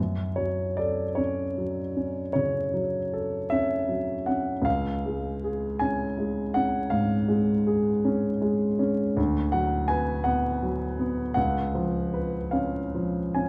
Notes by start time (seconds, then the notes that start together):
Already playing: F#2
0.36 F#3 C#5
0.77 A4 D5
1.15 C#4 C#5
1.58 F#3
1.97 C#4
2.33 C#3 C#5
2.74 F#3
3.13 A4
3.50 C#4 E5
3.89 F#3
4.26 C#4 F#5
4.62 C#2 F5
5.06 G#3
5.44 G#4
5.79 C#4 G#5
6.18 G#3
6.54 C#4 F#5
6.90 G#2 F5
7.28 G#3
7.67 G#4
8.05 C#4
8.42 G#3
8.79 C#4
9.17 D2
9.52 F#3 F#5
9.88 B4 G#5
10.24 B3 F#5
10.63 F#3
10.99 B3
11.34 C#2 F#5
11.75 F3
12.14 B4
12.51 C#4 F5
12.95 F3
13.35 C#4 G#5